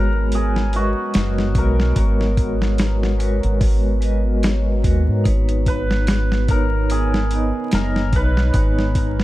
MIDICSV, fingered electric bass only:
0, 0, Header, 1, 2, 480
1, 0, Start_track
1, 0, Key_signature, 5, "minor"
1, 0, Tempo, 821918
1, 1149, Time_signature, 4, 2, 24, 8
1, 5394, End_track
2, 0, Start_track
2, 0, Title_t, "Fingered electric bass"
2, 0, Program_c, 0, 33
2, 0, Note_on_c, 0, 32, 94
2, 540, Note_off_c, 0, 32, 0
2, 674, Note_on_c, 0, 30, 88
2, 907, Note_off_c, 0, 30, 0
2, 907, Note_on_c, 0, 35, 79
2, 1123, Note_off_c, 0, 35, 0
2, 1147, Note_on_c, 0, 32, 100
2, 1978, Note_off_c, 0, 32, 0
2, 2008, Note_on_c, 0, 32, 90
2, 2827, Note_off_c, 0, 32, 0
2, 2831, Note_on_c, 0, 39, 80
2, 2950, Note_off_c, 0, 39, 0
2, 2969, Note_on_c, 0, 44, 93
2, 3058, Note_off_c, 0, 44, 0
2, 3071, Note_on_c, 0, 32, 104
2, 4380, Note_off_c, 0, 32, 0
2, 4515, Note_on_c, 0, 30, 90
2, 4751, Note_off_c, 0, 30, 0
2, 4751, Note_on_c, 0, 35, 87
2, 4965, Note_off_c, 0, 35, 0
2, 4990, Note_on_c, 0, 32, 105
2, 5394, Note_off_c, 0, 32, 0
2, 5394, End_track
0, 0, End_of_file